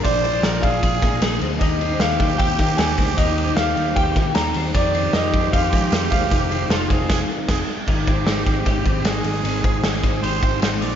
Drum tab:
CC |--------|--------|--------|--------|
RD |xxxxxxxx|xxxxxxxx|xxxxxxxx|xxxxxxxx|
HH |p-------|-------o|p------o|p------o|
SD |--o--oo-|--o--oo-|--o--oo-|--o---o-|
BD |o--ooo--|o--ooo-o|o---oo--|o--ooo-o|

CC |----x-x-|x-------|--------|
RD |xxxx----|-xxxxxxx|xxxxxxxx|
HH |p-------|-------o|p------o|
SD |--o-o-o-|--o---o-|--o---o-|
BD |o--oo-o-|oo-ooo--|-o-o-o--|